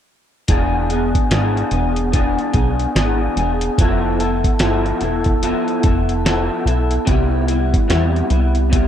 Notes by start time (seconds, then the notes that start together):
0.48 E1 E3 B3 D4 G#4, kick, closed hi-hat
0.90 B3 D4 G#4, closed hi-hat
1.15 kick, closed hi-hat
1.30 G#1 E3 B3 D4 G#4, snare, closed hi-hat
1.57 closed hi-hat
1.71 E1 B3 D4 G#4, closed hi-hat
1.96 closed hi-hat
2.12 E3 B3 D4 G#4, kick, closed hi-hat
2.38 closed hi-hat
2.53 B1 B3 D4 G#4, kick, closed hi-hat
2.79 closed hi-hat
2.95 G#1 E3 B3 D4 G#4, snare, closed hi-hat
3.36 E1 D4 G#4, closed hi-hat
3.40 B3
3.61 closed hi-hat
3.78 F1 F3 B3 E4 A4, kick, closed hi-hat
4.19 B3 E4 A4, closed hi-hat
4.44 kick, closed hi-hat
4.59 G1 F3 B3 E4 A4, snare, closed hi-hat
4.86 closed hi-hat
5.01 E1 B3 E4 A4, closed hi-hat
5.24 kick, closed hi-hat
5.42 F3 B3 E4 A4, closed hi-hat
5.68 closed hi-hat
5.83 F1 B3 E4 A4, kick, closed hi-hat
6.09 closed hi-hat
6.25 F3 B3 E4 A4, snare, closed hi-hat
6.65 B1 B3 E4 A4, closed hi-hat
6.91 closed hi-hat
7.05 C2 C3 G3 B3 E4, kick, closed hi-hat
7.47 G3 B3 E4, closed hi-hat
7.74 kick, closed hi-hat
7.88 E2 C3 G3 B3 E4, snare, closed hi-hat
8.16 closed hi-hat
8.30 C2 G3 B3 E4, closed hi-hat
8.55 closed hi-hat
8.70 C3 G3 B3 E4, kick, closed hi-hat